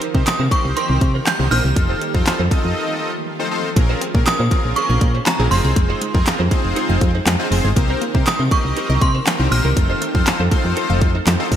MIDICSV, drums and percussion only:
0, 0, Header, 1, 2, 480
1, 0, Start_track
1, 0, Tempo, 500000
1, 1694, Time_signature, 4, 2, 24, 8
1, 11100, End_track
2, 0, Start_track
2, 0, Title_t, "Drums"
2, 15, Note_on_c, 9, 42, 82
2, 111, Note_off_c, 9, 42, 0
2, 140, Note_on_c, 9, 36, 91
2, 236, Note_off_c, 9, 36, 0
2, 255, Note_on_c, 9, 42, 97
2, 258, Note_on_c, 9, 39, 112
2, 266, Note_on_c, 9, 38, 92
2, 351, Note_off_c, 9, 42, 0
2, 354, Note_off_c, 9, 39, 0
2, 362, Note_off_c, 9, 38, 0
2, 493, Note_on_c, 9, 36, 102
2, 499, Note_on_c, 9, 42, 66
2, 589, Note_off_c, 9, 36, 0
2, 595, Note_off_c, 9, 42, 0
2, 736, Note_on_c, 9, 42, 88
2, 832, Note_off_c, 9, 42, 0
2, 973, Note_on_c, 9, 36, 96
2, 973, Note_on_c, 9, 42, 68
2, 1069, Note_off_c, 9, 36, 0
2, 1069, Note_off_c, 9, 42, 0
2, 1214, Note_on_c, 9, 39, 113
2, 1215, Note_on_c, 9, 42, 87
2, 1222, Note_on_c, 9, 38, 86
2, 1310, Note_off_c, 9, 39, 0
2, 1311, Note_off_c, 9, 42, 0
2, 1318, Note_off_c, 9, 38, 0
2, 1458, Note_on_c, 9, 46, 72
2, 1554, Note_off_c, 9, 46, 0
2, 1693, Note_on_c, 9, 36, 106
2, 1694, Note_on_c, 9, 42, 82
2, 1789, Note_off_c, 9, 36, 0
2, 1790, Note_off_c, 9, 42, 0
2, 1934, Note_on_c, 9, 42, 84
2, 2030, Note_off_c, 9, 42, 0
2, 2060, Note_on_c, 9, 36, 95
2, 2156, Note_off_c, 9, 36, 0
2, 2172, Note_on_c, 9, 42, 90
2, 2175, Note_on_c, 9, 39, 112
2, 2183, Note_on_c, 9, 38, 84
2, 2268, Note_off_c, 9, 42, 0
2, 2271, Note_off_c, 9, 39, 0
2, 2279, Note_off_c, 9, 38, 0
2, 2412, Note_on_c, 9, 36, 104
2, 2416, Note_on_c, 9, 42, 68
2, 2508, Note_off_c, 9, 36, 0
2, 2512, Note_off_c, 9, 42, 0
2, 3614, Note_on_c, 9, 36, 108
2, 3614, Note_on_c, 9, 42, 82
2, 3710, Note_off_c, 9, 36, 0
2, 3710, Note_off_c, 9, 42, 0
2, 3854, Note_on_c, 9, 42, 88
2, 3950, Note_off_c, 9, 42, 0
2, 3980, Note_on_c, 9, 36, 94
2, 4076, Note_off_c, 9, 36, 0
2, 4092, Note_on_c, 9, 42, 95
2, 4095, Note_on_c, 9, 39, 111
2, 4103, Note_on_c, 9, 38, 89
2, 4188, Note_off_c, 9, 42, 0
2, 4191, Note_off_c, 9, 39, 0
2, 4199, Note_off_c, 9, 38, 0
2, 4333, Note_on_c, 9, 36, 103
2, 4336, Note_on_c, 9, 42, 70
2, 4429, Note_off_c, 9, 36, 0
2, 4432, Note_off_c, 9, 42, 0
2, 4573, Note_on_c, 9, 42, 87
2, 4669, Note_off_c, 9, 42, 0
2, 4811, Note_on_c, 9, 42, 65
2, 4813, Note_on_c, 9, 36, 99
2, 4907, Note_off_c, 9, 42, 0
2, 4909, Note_off_c, 9, 36, 0
2, 5052, Note_on_c, 9, 39, 112
2, 5053, Note_on_c, 9, 42, 85
2, 5060, Note_on_c, 9, 38, 93
2, 5148, Note_off_c, 9, 39, 0
2, 5149, Note_off_c, 9, 42, 0
2, 5156, Note_off_c, 9, 38, 0
2, 5296, Note_on_c, 9, 46, 74
2, 5392, Note_off_c, 9, 46, 0
2, 5533, Note_on_c, 9, 36, 107
2, 5533, Note_on_c, 9, 42, 84
2, 5629, Note_off_c, 9, 36, 0
2, 5629, Note_off_c, 9, 42, 0
2, 5774, Note_on_c, 9, 42, 85
2, 5870, Note_off_c, 9, 42, 0
2, 5900, Note_on_c, 9, 36, 94
2, 5996, Note_off_c, 9, 36, 0
2, 6013, Note_on_c, 9, 42, 93
2, 6016, Note_on_c, 9, 39, 106
2, 6024, Note_on_c, 9, 38, 88
2, 6109, Note_off_c, 9, 42, 0
2, 6112, Note_off_c, 9, 39, 0
2, 6120, Note_off_c, 9, 38, 0
2, 6252, Note_on_c, 9, 36, 104
2, 6256, Note_on_c, 9, 42, 70
2, 6348, Note_off_c, 9, 36, 0
2, 6352, Note_off_c, 9, 42, 0
2, 6493, Note_on_c, 9, 42, 90
2, 6589, Note_off_c, 9, 42, 0
2, 6732, Note_on_c, 9, 42, 64
2, 6733, Note_on_c, 9, 36, 98
2, 6828, Note_off_c, 9, 42, 0
2, 6829, Note_off_c, 9, 36, 0
2, 6974, Note_on_c, 9, 39, 112
2, 6975, Note_on_c, 9, 42, 87
2, 6982, Note_on_c, 9, 38, 90
2, 7070, Note_off_c, 9, 39, 0
2, 7071, Note_off_c, 9, 42, 0
2, 7078, Note_off_c, 9, 38, 0
2, 7217, Note_on_c, 9, 46, 73
2, 7313, Note_off_c, 9, 46, 0
2, 7454, Note_on_c, 9, 36, 105
2, 7455, Note_on_c, 9, 42, 84
2, 7550, Note_off_c, 9, 36, 0
2, 7551, Note_off_c, 9, 42, 0
2, 7695, Note_on_c, 9, 42, 84
2, 7791, Note_off_c, 9, 42, 0
2, 7821, Note_on_c, 9, 36, 94
2, 7917, Note_off_c, 9, 36, 0
2, 7933, Note_on_c, 9, 42, 99
2, 7936, Note_on_c, 9, 39, 112
2, 7944, Note_on_c, 9, 38, 90
2, 8029, Note_off_c, 9, 42, 0
2, 8032, Note_off_c, 9, 39, 0
2, 8040, Note_off_c, 9, 38, 0
2, 8173, Note_on_c, 9, 36, 103
2, 8178, Note_on_c, 9, 42, 69
2, 8269, Note_off_c, 9, 36, 0
2, 8274, Note_off_c, 9, 42, 0
2, 8415, Note_on_c, 9, 42, 87
2, 8511, Note_off_c, 9, 42, 0
2, 8654, Note_on_c, 9, 36, 100
2, 8654, Note_on_c, 9, 42, 63
2, 8750, Note_off_c, 9, 36, 0
2, 8750, Note_off_c, 9, 42, 0
2, 8895, Note_on_c, 9, 39, 115
2, 8896, Note_on_c, 9, 42, 89
2, 8903, Note_on_c, 9, 38, 92
2, 8991, Note_off_c, 9, 39, 0
2, 8992, Note_off_c, 9, 42, 0
2, 8999, Note_off_c, 9, 38, 0
2, 9139, Note_on_c, 9, 46, 72
2, 9235, Note_off_c, 9, 46, 0
2, 9376, Note_on_c, 9, 36, 109
2, 9377, Note_on_c, 9, 42, 82
2, 9472, Note_off_c, 9, 36, 0
2, 9473, Note_off_c, 9, 42, 0
2, 9617, Note_on_c, 9, 42, 86
2, 9713, Note_off_c, 9, 42, 0
2, 9742, Note_on_c, 9, 36, 96
2, 9838, Note_off_c, 9, 36, 0
2, 9854, Note_on_c, 9, 42, 95
2, 9858, Note_on_c, 9, 39, 117
2, 9866, Note_on_c, 9, 38, 86
2, 9950, Note_off_c, 9, 42, 0
2, 9954, Note_off_c, 9, 39, 0
2, 9962, Note_off_c, 9, 38, 0
2, 10095, Note_on_c, 9, 36, 105
2, 10098, Note_on_c, 9, 42, 68
2, 10191, Note_off_c, 9, 36, 0
2, 10194, Note_off_c, 9, 42, 0
2, 10337, Note_on_c, 9, 42, 88
2, 10433, Note_off_c, 9, 42, 0
2, 10574, Note_on_c, 9, 42, 66
2, 10575, Note_on_c, 9, 36, 100
2, 10670, Note_off_c, 9, 42, 0
2, 10671, Note_off_c, 9, 36, 0
2, 10815, Note_on_c, 9, 39, 112
2, 10816, Note_on_c, 9, 42, 84
2, 10823, Note_on_c, 9, 38, 90
2, 10911, Note_off_c, 9, 39, 0
2, 10912, Note_off_c, 9, 42, 0
2, 10919, Note_off_c, 9, 38, 0
2, 11056, Note_on_c, 9, 36, 102
2, 11059, Note_on_c, 9, 46, 73
2, 11100, Note_off_c, 9, 36, 0
2, 11100, Note_off_c, 9, 46, 0
2, 11100, End_track
0, 0, End_of_file